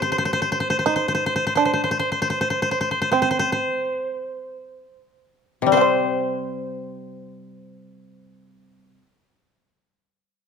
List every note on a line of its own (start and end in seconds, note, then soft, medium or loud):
0.00 0.34 A2 soft
0.00 0.85 C4 medium
0.00 0.91 G4 medium
0.00 0.11 C5 soft
0.12 0.18 C5 soft
0.18 0.25 C5 soft
0.25 0.33 C5 soft
0.33 0.41 C5 soft
0.42 0.51 C5 soft
0.52 0.60 C5 soft
0.60 0.70 C5 soft
0.70 0.78 C5 soft
0.79 0.86 C5 soft
0.86 1.57 D#4 soft
0.86 0.95 C5 soft
0.96 1.08 C5 soft
1.08 1.14 C5 soft
1.15 1.26 C5 soft
1.26 1.35 C5 soft
1.36 1.46 C5 soft
1.47 1.55 C5 soft
1.55 3.12 D4 soft
1.55 1.65 C5 soft
1.65 1.73 C5 soft
1.74 1.83 C5 soft
1.84 1.91 C5 soft
1.91 1.99 C5 soft
1.99 2.11 C5 soft
2.12 2.21 C5 soft
2.22 2.30 C5 soft
2.30 2.41 C5 soft
2.41 2.50 C5 soft
2.50 2.62 C5 soft
2.62 2.71 C5 soft
2.71 2.80 C5 soft
2.81 2.91 C5 soft
2.91 3.01 C5 soft
3.02 3.11 C5 soft
3.12 4.85 C4 soft
3.12 3.21 C5 soft
3.22 3.30 C5 soft
3.31 3.39 C5 soft
3.39 3.52 C5 soft
3.52 5.24 C5 soft
5.62 9.00 C3 soft
5.66 8.95 G3 soft
5.72 9.01 C4 soft
5.72 8.98 C4 soft
5.72 8.96 C5 soft
5.77 5.81 G4 soft
5.77 9.06 C5 soft